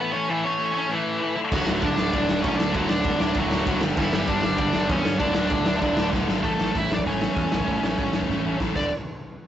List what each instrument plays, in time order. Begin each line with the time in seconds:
0.00 overdriven electric guitar A2 E3 A3, lead electric guitar B3 B4
0.12 overdriven electric guitar A2 E3 A3, lead electric guitar C#4 C#5
0.29 overdriven electric guitar A2 E3 A3, lead electric guitar E3 E4
0.44 overdriven electric guitar A2 E3 A3, lead electric guitar C#4 C#5
0.59 overdriven electric guitar A2 E3 A3
0.74 overdriven electric guitar A2 E3 A3, lead electric guitar C#4 C#5
0.89 overdriven electric guitar A2 E3 A3, lead electric guitar E3
0.94 lead electric guitar E4
1.05 overdriven electric guitar A2 E3 A3
1.22 overdriven electric guitar A2 E3 A3
1.36 overdriven electric guitar D2 A2 D3
1.52 picked electric bass D1, overdriven electric guitar D2 A2 D3, lead electric guitar F#3 F#4, kick, crash
1.67 picked electric bass D1, overdriven electric guitar D2 A2 D3, snare
1.82 picked electric bass D1, overdriven electric guitar D2 A2 D3, lead electric guitar D4 D5, kick, ride
1.97 picked electric bass D1, overdriven electric guitar D2 A2 D3, snare
2.13 picked electric bass D1, overdriven electric guitar D2 A2 D3, lead electric guitar D4 D5, kick, ride
2.29 picked electric bass D1, overdriven electric guitar D2 A2 D3, snare
2.42 picked electric bass B1, overdriven electric guitar D2 A2 D3, lead electric guitar C#4 C#5, kick, ride
2.56 picked electric bass D2, lead electric guitar D4 D5, snare
2.61 overdriven electric guitar D2 A2 D3
2.72 picked electric bass D1, distorted electric guitar D2, lead electric guitar F#3 F#4, kick, ride
2.76 overdriven electric guitar D2 A2 D3
2.89 picked electric bass D1, overdriven electric guitar D2 A2 D3, lead electric guitar D4 D5, snare
3.04 picked electric bass D1, overdriven electric guitar D2 A2 D3, kick, ride
3.20 picked electric bass D1, overdriven electric guitar D2 A2 D3, lead electric guitar D4 D5, snare
3.34 picked electric bass D1, overdriven electric guitar D2 A2 D3, lead electric guitar F#3 F#4, kick, ride
3.50 picked electric bass D1, overdriven electric guitar D2 A2 D3, snare
3.66 picked electric bass D1, overdriven electric guitar D2 A2 D3, kick, ride
3.81 picked electric bass G1, overdriven electric guitar G2 D3 G3, snare
3.97 picked electric bass G1, overdriven electric guitar G2 D3 G3, lead electric guitar E3 E4, kick, crash
4.11 picked electric bass G1, overdriven electric guitar G2 D3 G3, lead electric guitar E3 E4, snare
4.27 picked electric bass G1, overdriven electric guitar G2 D3 G3, lead electric guitar D4 D5, kick, ride
4.43 picked electric bass G1, overdriven electric guitar G2 D3 G3, snare
4.58 picked electric bass G1, overdriven electric guitar G2 D3 G3, lead electric guitar D4 D5, kick, ride
4.73 picked electric bass G1, overdriven electric guitar G2 D3 G3, snare
4.89 picked electric bass E2, overdriven electric guitar G2 D3 G3, lead electric guitar C#4 C#5, kick, ride
5.05 picked electric bass G2, overdriven electric guitar G2 D3 G3, snare
5.19 picked electric bass D1, overdriven electric guitar D2 A2 D3, lead electric guitar D4 D5, kick, ride
5.35 picked electric bass D1, overdriven electric guitar D2 A2 D3, snare
5.50 picked electric bass D1, overdriven electric guitar D2 A2 D3, kick, ride
5.65 picked electric bass D1, overdriven electric guitar D2 A2 D3, snare
5.82 picked electric bass D1, overdriven electric guitar D2 A2 D3, kick, ride
5.97 picked electric bass D1, overdriven electric guitar D2 A2 D3, snare
6.13 picked electric bass D1, overdriven electric guitar D2 A2 D3, kick, snare
6.29 picked electric bass G#1, overdriven electric guitar D2 A2 D3, snare
6.43 picked electric bass A1, overdriven electric guitar A2 E3 A3, lead electric guitar A3 A4, kick, open hi-hat
6.58 picked electric bass A1, overdriven electric guitar A2 E3 A3, snare
6.74 picked electric bass A1, overdriven electric guitar A2 E3 A3, lead electric guitar E4 E5, kick, open hi-hat
6.91 picked electric bass A1, overdriven electric guitar A2 E3 A3, lead electric guitar D4 D5, snare
6.99 kick
7.04 picked electric bass A1, overdriven electric guitar A2 E3 A3, lead electric guitar C#4, kick, open hi-hat
7.09 lead electric guitar C#5
7.20 overdriven electric guitar A2 E3 A3, snare
7.36 picked electric bass E2, overdriven electric guitar A2 E3 A3, kick, open hi-hat
7.51 picked electric bass A1, overdriven electric guitar A2 E3 A3, snare
7.60 kick
7.67 picked electric bass A1, overdriven electric guitar A2 E3 A3, kick, open hi-hat
7.82 picked electric bass A1, overdriven electric guitar A2 E3 A3, snare
7.98 picked electric bass A1, overdriven electric guitar A2 E3 A3, kick, open hi-hat
8.13 picked electric bass A1, overdriven electric guitar A2 E3 A3, snare
8.22 kick
8.30 picked electric bass A1, overdriven electric guitar A2 E3 A3, kick, snare
8.45 picked electric bass A1, overdriven electric guitar A2 E3 A3
8.60 picked electric bass A1, overdriven electric guitar A2 E3 A3, kick, snare
8.75 picked electric bass D1, overdriven electric guitar D2 A2 D3, lead electric guitar D5, kick, crash